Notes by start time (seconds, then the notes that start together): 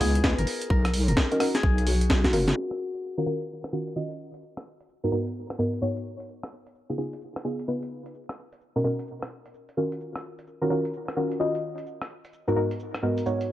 Already playing: B4
0.00 C#2 B3 D#4 F4 G#4, open hi-hat
0.15 closed hi-hat
0.24 B3 D#4 F4 B4, kick, snare
0.38 G#1 A#4, closed hi-hat
0.47 open hi-hat
0.62 closed hi-hat
0.70 B1 A#4, kick
0.85 cross-stick, closed hi-hat
0.94 open hi-hat
1.08 F#1 A#4, closed hi-hat
1.17 kick, snare
1.31 C#4 D#4 F#4 A#4, closed hi-hat
1.40 C#4 D#4 F#4 A#4, cross-stick, open hi-hat
1.55 G#4, snare, closed hi-hat
1.63 B1, kick
1.78 closed hi-hat
1.87 F#4, open hi-hat
2.01 closed hi-hat
2.10 kick, snare
2.24 F#4, kick, snare, closed hi-hat
2.33 F#1 C#4 F4 F#4 A#4, open hi-hat
2.48 snare, closed hi-hat
2.57 shaker
2.71 cross-stick, closed hi-hat
2.94 closed hi-hat, shaker
3.03 shaker
3.17 D#3 C#4 F4 F#4 A#4, shaker
3.26 D#3 C#4 F4 F#4 A#4
3.41 closed hi-hat, shaker
3.49 shaker
3.64 cross-stick, closed hi-hat
3.73 D#3 C#4 F4 F#4 A#4
3.87 closed hi-hat, shaker
3.96 D#3 C#4 F4 F#4 D#5, shaker
4.11 closed hi-hat, shaker
4.34 closed hi-hat, shaker
4.43 shaker
4.57 cross-stick, closed hi-hat
4.80 closed hi-hat, shaker
4.89 shaker
5.04 G#2 B3 D#4 F#4 A#4, shaker
5.12 G#2 B3 D#4 F#4 A#4
5.27 closed hi-hat, shaker
5.36 shaker
5.50 cross-stick, closed hi-hat
5.59 G#2 B3 D#4 F#4 A#4
5.74 closed hi-hat, shaker
5.82 G#2 B3 D#4 F#4 C#5, shaker
5.97 closed hi-hat, shaker
6.20 closed hi-hat, shaker
6.29 shaker
6.43 cross-stick, closed hi-hat
6.67 closed hi-hat, shaker
6.75 shaker
6.89 C#3 B3 D#4 F4 G#4, shaker
6.98 C#3 B3 D#4 F4 G#4
7.13 closed hi-hat, shaker
7.22 shaker
7.36 cross-stick, closed hi-hat
7.45 C#3 B3 D#4 F4 G#4
7.59 closed hi-hat, shaker
7.68 C#3 B3 D#4 F4 B4, shaker
7.83 closed hi-hat, shaker
8.06 closed hi-hat, shaker
8.15 shaker
8.29 cross-stick, closed hi-hat, shaker
8.53 closed hi-hat, shaker
8.61 shaker
8.76 B2 C#4 D#4 F#4 A#4, shaker
8.84 B2 C#4 D#4 F#4 A#4
8.99 closed hi-hat, shaker
9.08 shaker
9.22 cross-stick, closed hi-hat, shaker
9.46 closed hi-hat, shaker
9.54 shaker
9.69 closed hi-hat, shaker
9.77 D#3 C#4 F4 F#4 A#4
9.92 closed hi-hat, shaker
10.01 shaker
10.16 cross-stick, closed hi-hat, shaker
10.39 closed hi-hat, shaker
10.47 shaker
10.61 D#3 C#4 F4 F#4 A#4, shaker
10.70 D#3 C#4 F4 F#4 A#4
10.85 closed hi-hat, shaker
10.94 shaker
11.08 cross-stick, closed hi-hat, shaker
11.16 D#3 C#4 F4 F#4 A#4
11.32 closed hi-hat, shaker
11.40 D#3 C#4 F4 F#4 D#5, shaker
11.55 closed hi-hat, shaker
11.78 closed hi-hat, shaker
11.87 shaker
12.02 cross-stick, closed hi-hat, shaker
12.25 closed hi-hat, shaker
12.33 shaker
12.47 G#2 B3 D#4 F#4 A#4, shaker
12.56 G#2 B3 D#4 F#4 A#4
12.71 closed hi-hat, shaker
12.80 shaker
12.95 cross-stick, closed hi-hat, shaker
13.03 G#2 B3 D#4 F#4 A#4
13.18 closed hi-hat, shaker
13.26 G#2 B3 D#4 F#4 C#5, shaker
13.41 closed hi-hat, shaker